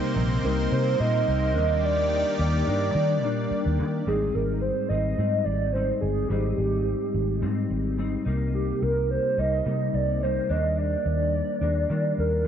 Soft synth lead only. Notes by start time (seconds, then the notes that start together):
0.45 A#4
0.72 C5
1.00 D#5
1.84 D5
2.41 D5
2.68 D5
4.07 G#4
4.35 A#4
4.61 C5
4.89 D#5
5.44 D5
5.73 C5
6.01 G#4
6.28 G4
8.55 G4
8.82 A#4
9.11 C5
9.39 D#5
9.94 D5
10.23 C5
10.51 D#5
10.78 D5
12.19 A#4